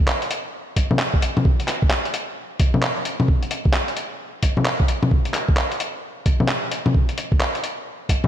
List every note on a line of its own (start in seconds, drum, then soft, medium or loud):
0.08 clap loud
0.22 closed hi-hat soft
0.31 closed hi-hat medium
0.76 kick medium
0.76 closed hi-hat medium
0.91 low bongo medium
0.99 clap loud
1.14 kick loud
1.22 closed hi-hat medium
1.37 low bongo medium
1.45 kick loud
1.60 closed hi-hat soft
1.68 clap medium
1.68 closed hi-hat medium
1.82 kick loud
1.91 clap loud
2.05 closed hi-hat soft
2.14 closed hi-hat medium
2.60 kick loud
2.60 closed hi-hat medium
2.74 low bongo medium
2.83 clap loud
3.05 closed hi-hat medium
3.20 low bongo medium
3.28 kick loud
3.43 closed hi-hat soft
3.51 closed hi-hat medium
3.65 kick loud
3.74 clap loud
3.88 closed hi-hat soft
3.97 closed hi-hat medium
4.43 kick medium
4.43 closed hi-hat medium
4.57 low bongo medium
4.65 clap loud
4.80 kick loud
4.88 closed hi-hat medium
5.03 low bongo medium
5.11 kick loud
5.25 closed hi-hat soft
5.34 clap medium
5.34 closed hi-hat medium
5.49 kick loud
5.57 clap loud
5.72 closed hi-hat soft
5.80 closed hi-hat medium
6.26 kick loud
6.26 closed hi-hat medium
6.40 low bongo medium
6.49 clap loud
6.72 closed hi-hat medium
6.86 low bongo medium
6.95 kick loud
7.09 closed hi-hat soft
7.18 closed hi-hat medium
7.32 kick loud
7.41 clap loud
7.55 closed hi-hat soft
7.64 closed hi-hat medium
8.09 kick medium
8.09 closed hi-hat medium
8.24 low bongo medium